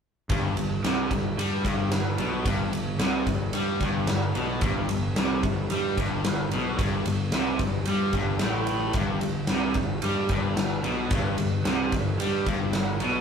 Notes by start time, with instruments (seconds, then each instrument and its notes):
0.29 picked electric bass G1, distorted electric guitar G2, kick, ride
0.57 picked electric bass G1, distorted electric guitar G2, ride
0.84 picked electric bass C2, distorted electric guitar C3, snare, ride
1.10 picked electric bass G1, distorted electric guitar G2, kick, ride
1.38 picked electric bass G2, distorted electric guitar G3, ride
1.64 picked electric bass G1, distorted electric guitar G2, kick, ride
1.92 picked electric bass G1, distorted electric guitar G2, snare, ride
2.18 picked electric bass B1, distorted electric guitar B2, ride
2.45 picked electric bass G1, distorted electric guitar G2, kick, ride
2.73 picked electric bass G1, distorted electric guitar G2, ride
2.99 picked electric bass C2, distorted electric guitar C3, snare, ride
3.26 picked electric bass G1, distorted electric guitar G2, kick, ride
3.53 picked electric bass G2, distorted electric guitar G3, ride
3.80 picked electric bass G1, distorted electric guitar G2, kick, ride
4.07 picked electric bass G1, distorted electric guitar G2, snare, ride
4.35 picked electric bass B1, distorted electric guitar B2, ride
4.61 picked electric bass G1, distorted electric guitar G2, kick, ride
4.89 picked electric bass G1, distorted electric guitar G2, ride
5.16 picked electric bass C2, distorted electric guitar C3, snare, ride
5.43 picked electric bass G1, distorted electric guitar G2, kick, ride
5.70 picked electric bass G2, distorted electric guitar G3, ride
5.97 picked electric bass G1, distorted electric guitar G2, kick, ride
6.24 picked electric bass G1, distorted electric guitar G2, snare, ride
6.51 picked electric bass B1, distorted electric guitar B2, ride
6.78 picked electric bass G1, distorted electric guitar G2, kick, ride
7.05 picked electric bass G1, distorted electric guitar G2, ride
7.32 picked electric bass C2, distorted electric guitar C3, snare, ride
7.59 picked electric bass G1, distorted electric guitar G2, kick, ride
7.85 picked electric bass G2, distorted electric guitar G3, ride
8.13 picked electric bass G1, distorted electric guitar G2, kick, ride
8.39 picked electric bass A1, distorted electric guitar A2, snare, ride
8.67 ride
8.93 picked electric bass G1, distorted electric guitar G2, kick, ride
9.21 picked electric bass G1, distorted electric guitar G2, ride
9.47 picked electric bass C2, distorted electric guitar C3, snare, ride
9.74 picked electric bass G1, distorted electric guitar G2, kick, ride
10.02 picked electric bass G2, distorted electric guitar G3, ride
10.29 picked electric bass G1, distorted electric guitar G2, kick, ride
10.57 picked electric bass G1, distorted electric guitar G2, snare, ride
10.84 picked electric bass B1, distorted electric guitar B2, ride
11.10 picked electric bass G1, distorted electric guitar G2, kick, ride
11.37 picked electric bass G1, ride
11.41 distorted electric guitar G2
11.65 picked electric bass C2, distorted electric guitar C3, snare, ride
11.91 picked electric bass G1, distorted electric guitar G2, kick, ride
12.20 picked electric bass G2, distorted electric guitar G3, ride
12.46 picked electric bass G1, distorted electric guitar G2, kick, ride
12.73 picked electric bass G1, distorted electric guitar G2, snare, ride
13.00 picked electric bass B1, distorted electric guitar B2, ride